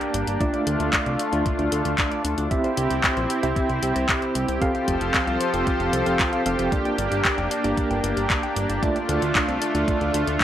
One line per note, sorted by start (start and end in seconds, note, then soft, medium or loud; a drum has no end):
0.00 0.37 A#3 medium
0.00 0.38 A#3 medium
0.00 0.37 D4 medium
0.00 2.47 D4 medium
0.00 0.37 G4 medium
0.00 0.38 G4 medium
0.00 0.37 D5 medium
0.00 0.12 G5 medium
0.00 closed hi-hat soft
0.14 0.24 G1 medium
0.14 0.27 D5 medium
0.14 closed hi-hat medium
0.27 0.37 G1 medium
0.27 0.38 G4 medium
0.27 closed hi-hat medium
0.40 1.29 A3 medium
0.40 2.49 A3 medium
0.40 1.29 D4 medium
0.40 0.51 D4 medium
0.40 1.29 F4 medium
0.40 2.49 F4 medium
0.40 1.29 D5 medium
0.40 kick loud
0.40 closed hi-hat soft
0.54 0.64 D5 medium
0.54 closed hi-hat soft
0.67 0.77 D2 medium
0.67 0.79 A4 medium
0.67 closed hi-hat medium
0.80 0.90 D2 medium
0.80 0.91 D4 medium
0.80 closed hi-hat soft
0.93 1.04 D4 medium
0.93 kick loud
0.93 clap loud
0.93 closed hi-hat medium
1.06 1.16 C2 medium
1.06 1.17 D5 medium
1.06 closed hi-hat soft
1.19 1.32 A4 medium
1.19 closed hi-hat medium
1.33 1.43 D2 medium
1.33 2.48 A3 medium
1.33 1.43 D4 medium
1.33 2.48 D4 medium
1.33 2.48 F4 medium
1.33 2.48 D5 medium
1.33 closed hi-hat soft
1.46 1.56 D4 medium
1.46 kick loud
1.46 closed hi-hat soft
1.59 1.69 D2 medium
1.59 1.69 D5 medium
1.59 closed hi-hat soft
1.72 1.82 D2 medium
1.72 1.85 A4 medium
1.72 closed hi-hat medium
1.85 1.95 D2 medium
1.85 1.96 D4 medium
1.85 closed hi-hat soft
1.98 2.09 D4 medium
1.98 kick loud
1.98 clap loud
1.98 closed hi-hat medium
2.11 2.22 D5 medium
2.11 closed hi-hat soft
2.25 2.35 D2 medium
2.25 2.37 A4 medium
2.25 closed hi-hat medium
2.38 2.48 D2 medium
2.38 2.48 D4 medium
2.38 closed hi-hat medium
2.51 4.59 C4 medium
2.51 2.62 C4 medium
2.51 3.40 C4 medium
2.51 4.59 E4 medium
2.51 3.40 E4 medium
2.51 8.79 G4 medium
2.51 3.40 G4 medium
2.51 3.40 E5 medium
2.51 kick loud
2.51 closed hi-hat soft
2.64 2.75 C5 medium
2.64 closed hi-hat soft
2.77 2.87 C2 medium
2.77 2.90 G4 medium
2.77 closed hi-hat medium
2.90 3.01 C2 medium
2.90 3.01 C4 medium
2.90 closed hi-hat soft
3.04 3.14 C4 medium
3.04 kick loud
3.04 clap loud
3.04 closed hi-hat soft
3.17 3.27 A#1 medium
3.17 3.27 C5 medium
3.17 closed hi-hat soft
3.30 3.43 G4 medium
3.30 closed hi-hat medium
3.43 3.53 C2 medium
3.43 4.58 C4 medium
3.43 3.54 C4 medium
3.43 4.58 E4 medium
3.43 4.58 G4 medium
3.43 4.58 E5 medium
3.43 closed hi-hat soft
3.56 3.67 C4 medium
3.56 kick loud
3.56 closed hi-hat soft
3.69 3.80 C2 medium
3.69 3.80 C5 medium
3.69 closed hi-hat soft
3.83 3.93 C2 loud
3.83 3.95 G4 medium
3.83 closed hi-hat medium
3.96 4.06 C2 medium
3.96 4.06 C4 medium
3.96 closed hi-hat soft
4.09 4.20 C4 medium
4.09 kick loud
4.09 clap loud
4.09 closed hi-hat soft
4.22 4.33 C5 medium
4.22 closed hi-hat soft
4.35 4.45 C2 medium
4.35 4.48 G4 medium
4.35 closed hi-hat medium
4.48 4.58 C2 medium
4.48 4.59 C4 medium
4.48 closed hi-hat soft
4.62 6.70 F3 medium
4.62 5.51 C4 medium
4.62 4.72 F4 medium
4.62 6.70 F4 medium
4.62 5.51 G4 medium
4.62 5.51 A4 medium
4.62 6.70 A4 medium
4.62 6.70 C5 medium
4.62 5.51 F5 medium
4.62 kick loud
4.62 closed hi-hat soft
4.75 4.85 F5 medium
4.75 closed hi-hat soft
4.88 4.98 F1 medium
4.88 5.00 C5 medium
4.88 kick medium
4.88 closed hi-hat medium
5.01 5.11 F1 medium
5.01 5.12 F4 medium
5.01 closed hi-hat soft
5.14 5.25 F4 medium
5.14 kick loud
5.14 clap loud
5.14 closed hi-hat soft
5.27 5.37 C2 medium
5.27 5.38 F5 medium
5.27 closed hi-hat soft
5.40 5.53 C5 medium
5.40 closed hi-hat medium
5.54 5.64 F1 medium
5.54 6.04 C4 medium
5.54 5.64 F4 medium
5.54 6.04 G4 medium
5.54 6.04 A4 medium
5.54 6.04 F5 medium
5.54 closed hi-hat soft
5.67 5.77 F4 medium
5.67 kick loud
5.67 closed hi-hat soft
5.80 5.90 F1 medium
5.80 5.91 F5 medium
5.80 closed hi-hat soft
5.93 6.03 C2 medium
5.93 6.06 C5 medium
5.93 closed hi-hat medium
6.06 6.16 F1 medium
6.06 6.43 C4 medium
6.06 6.17 F4 medium
6.06 6.43 G4 medium
6.06 6.43 A4 medium
6.06 6.43 F5 medium
6.06 closed hi-hat soft
6.19 6.30 F4 medium
6.19 kick loud
6.19 clap loud
6.19 closed hi-hat soft
6.33 6.43 F5 medium
6.33 closed hi-hat soft
6.46 6.56 F1 medium
6.46 6.69 C4 medium
6.46 6.69 G4 medium
6.46 6.69 A4 medium
6.46 6.58 C5 medium
6.46 6.69 F5 medium
6.46 closed hi-hat medium
6.59 6.69 F1 medium
6.59 6.70 F4 medium
6.59 closed hi-hat medium
6.72 7.61 A#3 medium
6.72 8.81 A#3 medium
6.72 10.44 D4 medium
6.72 7.61 D4 medium
6.72 7.61 G4 medium
6.72 6.83 G4 medium
6.72 7.61 D5 medium
6.72 kick loud
6.72 closed hi-hat soft
6.85 6.96 G5 medium
6.85 closed hi-hat soft
6.98 7.08 G1 medium
6.98 7.11 D5 medium
6.98 closed hi-hat medium
7.12 7.22 G1 medium
7.12 7.22 G4 medium
7.12 closed hi-hat soft
7.25 7.35 G4 medium
7.25 kick loud
7.25 clap loud
7.25 closed hi-hat soft
7.38 7.48 F1 medium
7.38 7.48 G5 medium
7.38 closed hi-hat soft
7.51 7.64 D5 medium
7.51 closed hi-hat medium
7.64 7.74 G1 medium
7.64 8.80 A#3 medium
7.64 8.80 D4 medium
7.64 7.75 G4 medium
7.64 8.80 G4 medium
7.64 8.80 D5 medium
7.64 closed hi-hat soft
7.77 7.88 G4 medium
7.77 kick loud
7.77 closed hi-hat soft
7.91 8.01 G1 medium
7.91 8.01 G5 medium
7.91 closed hi-hat soft
8.04 8.14 G1 loud
8.04 8.16 D5 medium
8.04 closed hi-hat medium
8.17 8.27 G1 medium
8.17 8.27 G4 medium
8.17 closed hi-hat soft
8.30 8.41 G4 medium
8.30 kick loud
8.30 clap loud
8.30 closed hi-hat soft
8.43 8.54 G5 medium
8.43 closed hi-hat soft
8.56 8.66 G1 medium
8.56 8.69 D5 medium
8.56 closed hi-hat medium
8.69 8.79 G1 medium
8.69 8.80 G4 medium
8.69 closed hi-hat medium
8.83 9.72 A3 medium
8.83 10.44 A3 medium
8.83 9.72 D4 medium
8.83 8.93 D4 medium
8.83 9.72 F4 medium
8.83 10.44 F4 medium
8.83 9.72 D5 medium
8.83 kick loud
8.83 closed hi-hat soft
8.96 9.06 D5 medium
8.96 closed hi-hat soft
9.09 9.19 D2 medium
9.09 9.22 A4 medium
9.09 closed hi-hat medium
9.22 9.32 D2 medium
9.22 9.33 D4 medium
9.22 closed hi-hat soft
9.35 9.46 D4 medium
9.35 kick loud
9.35 clap loud
9.35 closed hi-hat medium
9.48 9.58 C2 medium
9.48 9.59 D5 medium
9.48 closed hi-hat soft
9.62 9.74 A4 medium
9.62 closed hi-hat medium
9.75 9.85 D2 medium
9.75 10.44 A3 medium
9.75 10.44 D4 medium
9.75 9.85 D4 medium
9.75 10.44 F4 medium
9.75 10.44 D5 medium
9.75 closed hi-hat medium
9.88 9.98 D4 medium
9.88 kick loud
9.88 closed hi-hat soft
10.01 10.11 D2 medium
10.01 10.12 D5 medium
10.01 closed hi-hat soft
10.14 10.24 D2 medium
10.14 10.27 A4 medium
10.14 closed hi-hat medium
10.27 10.37 D2 medium
10.27 10.38 D4 medium
10.27 closed hi-hat medium
10.40 10.44 D4 medium
10.40 kick loud
10.40 clap loud
10.40 closed hi-hat soft